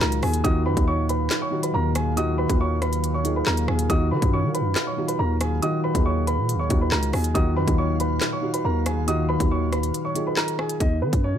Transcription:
Already playing: ambient pad A#2 D#3 F#3 F5, felt piano D#3 D#4 F4 F#4 G#4
0.01 808-style bass C#2, grand piano A#4 A#5, snare, clap
0.12 closed hi-hat
0.23 808-style bass D#2, grand piano G#4 G#5, cross-stick, open hi-hat
0.34 closed hi-hat
0.43 808-style bass D#2, felt piano D#3 D#4 F4 F#4, grand piano D#5 D#6, kick, closed hi-hat
0.66 808-style bass F#2, grand piano B4 B5
0.76 808-style bass D#2, felt piano D#3 D#4 F4 F#4, kick, closed hi-hat
0.88 grand piano C#5 C#6
1.09 grand piano B4 B5, closed hi-hat
1.31 snare, clap, closed hi-hat
1.42 grand piano C#5 C#6
1.50 felt piano D#3 D#4 F4 F#4
1.63 grand piano B4 B5, closed hi-hat
1.74 808-style bass D#2, grand piano A#4 A#5
1.95 grand piano G#4 G#5, cross-stick, closed hi-hat
2.16 felt piano D#3 D#4 F4 F#4, grand piano D#5 D#6, closed hi-hat
2.38 grand piano B4 B5
2.48 808-style bass D#2, felt piano D#3 D#4 F4 F#4, kick, closed hi-hat
2.61 grand piano C#5 C#6
2.82 grand piano B4 B5, cross-stick, closed hi-hat
2.93 closed hi-hat
3.04 closed hi-hat
3.14 grand piano C#5 C#6
3.24 felt piano D#3 D#4 F4 G#4, closed hi-hat
3.36 grand piano B4 B5
3.46 808-style bass D#2, grand piano A#4 A#5, snare, clap
3.57 closed hi-hat
3.68 808-style bass D#2, grand piano G#4 G#5, cross-stick
3.79 closed hi-hat
3.89 808-style bass D#2, felt piano D#3 D#4 F4 F#4, grand piano D#5 D#6, kick, closed hi-hat
4.11 808-style bass D#3, grand piano B4 B5
4.21 808-style bass F#2, felt piano D#3 D#4 F4 F#4, kick, closed hi-hat
4.33 grand piano C#5 C#6
4.44 808-style bass D#3
4.54 grand piano B4 B5, closed hi-hat
4.60 808-style bass F#2
4.76 snare, clap, closed hi-hat
4.87 grand piano C#5 C#6
4.97 felt piano D#3 D#4 F4 F#4
5.08 grand piano B4 B5, closed hi-hat
5.19 808-style bass D#2, grand piano A#4 A#5
5.41 grand piano G#4 G#5, cross-stick, closed hi-hat
5.62 felt piano D#3 D#4 F4 F#4, grand piano D#5 D#6, closed hi-hat
5.84 grand piano B4 B5
5.94 808-style bass D#2, felt piano D#3 D#4 F4 G#4, kick, closed hi-hat
6.06 grand piano C#5 C#6
6.27 grand piano B4 B5, closed hi-hat
6.38 808-style bass A#2
6.49 closed hi-hat
6.54 808-style bass D#2
6.59 grand piano C#5 C#6
6.69 808-style bass D#2, felt piano D#3 D#4 F4 F#4, kick, closed hi-hat
6.81 grand piano B4 B5
6.92 808-style bass C#2, grand piano A#4 A#5, snare, clap
7.03 closed hi-hat
7.13 808-style bass D#2, grand piano G#4 G#5, cross-stick, open hi-hat
7.24 closed hi-hat
7.34 808-style bass D#2, ambient pad A#2 D#3 F#3 F5, felt piano D#3 D#4 F4 F#4, grand piano D#5 D#6, kick, closed hi-hat
7.56 808-style bass F#2, grand piano B4 B5
7.67 808-style bass D#2, felt piano D#3 D#4 F4 F#4, kick, closed hi-hat
7.78 grand piano C#5 C#6
8.00 grand piano B4 B5, closed hi-hat
8.21 snare, clap, closed hi-hat
8.33 grand piano C#5 C#6
8.41 felt piano D#3 D#4 F4 F#4
8.54 grand piano B4 B5, closed hi-hat
8.65 808-style bass D#2, grand piano A#4 A#5
8.86 grand piano G#4 G#5, cross-stick, closed hi-hat
9.07 felt piano D#3 D#4 F4 F#4, grand piano D#5 D#6, closed hi-hat
9.29 grand piano B4 B5
9.39 808-style bass D#2, felt piano D#3 D#4 F4 F#4, kick, closed hi-hat
9.51 grand piano C#5 C#6
9.72 grand piano B4 B5, cross-stick, closed hi-hat
9.83 closed hi-hat
9.94 closed hi-hat
10.05 grand piano C#5 C#6
10.14 felt piano D#3 D#4 F4 G#4, closed hi-hat
10.27 grand piano B4 B5
10.37 grand piano A#4 A#5, snare, clap
10.48 closed hi-hat
10.59 grand piano G#4 G#5, cross-stick
10.69 closed hi-hat
10.80 808-style bass D#2, grand piano D#4 D#5, kick, closed hi-hat
11.02 808-style bass D#3, grand piano B3 B4
11.13 808-style bass F#2, kick, closed hi-hat
11.24 grand piano C#4 C#5
11.34 808-style bass D#3

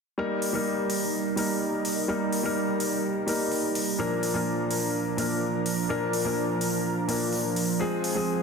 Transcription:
0.18 grand piano G3 A#3 D#4 A#4, analog synth pad G3 D#4 A#4
0.42 open hi-hat
0.53 grand piano G3 A#3 D#4 A#4
0.90 open hi-hat
1.36 grand piano G3 A#3 D#4 A#4, open hi-hat
1.85 open hi-hat
2.08 grand piano G3 A#3 D#4 A#4
2.33 open hi-hat
2.43 grand piano G3 A#3 D#4 A#4
2.80 open hi-hat
3.27 grand piano G3 A#3 D#4 A#4, open hi-hat
3.52 open hi-hat
3.75 open hi-hat
3.99 grand piano A#2 F3 A#3 D4 A#4, analog synth pad F3 D4 A#4
4.23 open hi-hat
4.34 grand piano A#2 F3 A#3 D4 A#4
4.71 open hi-hat
5.17 grand piano A#2 F3 A#3 D4 A#4, open hi-hat
5.66 open hi-hat
5.89 grand piano A#2 F3 A#3 D4 A#4
6.13 open hi-hat
6.24 grand piano A#2 F3 A#3 D4 A#4
6.61 open hi-hat
7.07 grand piano A#2 F3 A#3 D4 A#4, open hi-hat
7.33 open hi-hat
7.56 open hi-hat
7.79 grand piano F3 G#3 C4 G#4, analog synth pad C4 G#4
8.04 open hi-hat
8.15 grand piano F3 G#3 C4 G#4

